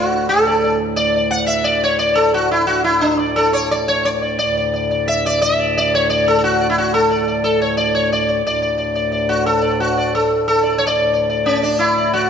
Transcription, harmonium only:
0, 0, Header, 1, 2, 480
1, 0, Start_track
1, 0, Tempo, 341103
1, 408, Time_signature, 3, 2, 24, 8
1, 8085, Tempo, 335383
1, 17463, End_track
2, 0, Start_track
2, 0, Title_t, "Harmonium"
2, 0, Program_c, 0, 20
2, 0, Note_on_c, 0, 38, 63
2, 0, Note_on_c, 0, 45, 59
2, 388, Note_off_c, 0, 38, 0
2, 390, Note_off_c, 0, 45, 0
2, 409, Note_on_c, 0, 38, 64
2, 411, Note_on_c, 0, 45, 62
2, 6165, Note_off_c, 0, 45, 0
2, 6171, Note_off_c, 0, 38, 0
2, 6186, Note_on_c, 0, 45, 64
2, 6192, Note_on_c, 0, 38, 60
2, 11912, Note_off_c, 0, 38, 0
2, 11914, Note_off_c, 0, 45, 0
2, 11934, Note_on_c, 0, 38, 57
2, 11935, Note_on_c, 0, 45, 65
2, 17463, Note_off_c, 0, 38, 0
2, 17463, Note_off_c, 0, 45, 0
2, 17463, End_track
0, 0, End_of_file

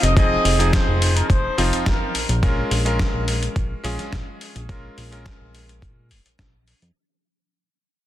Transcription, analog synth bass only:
0, 0, Header, 1, 2, 480
1, 0, Start_track
1, 0, Tempo, 566038
1, 139, Time_signature, 4, 2, 24, 8
1, 6837, End_track
2, 0, Start_track
2, 0, Title_t, "Analog synth bass"
2, 0, Program_c, 0, 38
2, 24, Note_on_c, 0, 29, 99
2, 317, Note_off_c, 0, 29, 0
2, 380, Note_on_c, 0, 29, 95
2, 676, Note_off_c, 0, 29, 0
2, 745, Note_on_c, 0, 29, 79
2, 1037, Note_off_c, 0, 29, 0
2, 1100, Note_on_c, 0, 29, 77
2, 1262, Note_off_c, 0, 29, 0
2, 1340, Note_on_c, 0, 29, 95
2, 1460, Note_off_c, 0, 29, 0
2, 1465, Note_on_c, 0, 29, 41
2, 1557, Note_off_c, 0, 29, 0
2, 1580, Note_on_c, 0, 29, 96
2, 1662, Note_off_c, 0, 29, 0
2, 1820, Note_on_c, 0, 34, 42
2, 1919, Note_off_c, 0, 34, 0
2, 1942, Note_on_c, 0, 34, 95
2, 2236, Note_off_c, 0, 34, 0
2, 2298, Note_on_c, 0, 34, 97
2, 2596, Note_off_c, 0, 34, 0
2, 2662, Note_on_c, 0, 34, 78
2, 2956, Note_off_c, 0, 34, 0
2, 3018, Note_on_c, 0, 34, 77
2, 3180, Note_off_c, 0, 34, 0
2, 3256, Note_on_c, 0, 34, 95
2, 3377, Note_off_c, 0, 34, 0
2, 3497, Note_on_c, 0, 34, 92
2, 3580, Note_off_c, 0, 34, 0
2, 3862, Note_on_c, 0, 34, 98
2, 4156, Note_off_c, 0, 34, 0
2, 4220, Note_on_c, 0, 34, 94
2, 4517, Note_off_c, 0, 34, 0
2, 4585, Note_on_c, 0, 34, 78
2, 4938, Note_on_c, 0, 46, 93
2, 4951, Note_off_c, 0, 34, 0
2, 5180, Note_on_c, 0, 29, 87
2, 5193, Note_off_c, 0, 46, 0
2, 5262, Note_off_c, 0, 29, 0
2, 5304, Note_on_c, 0, 34, 39
2, 5396, Note_off_c, 0, 34, 0
2, 5418, Note_on_c, 0, 34, 78
2, 5716, Note_off_c, 0, 34, 0
2, 5786, Note_on_c, 0, 41, 90
2, 5861, Note_off_c, 0, 41, 0
2, 6837, End_track
0, 0, End_of_file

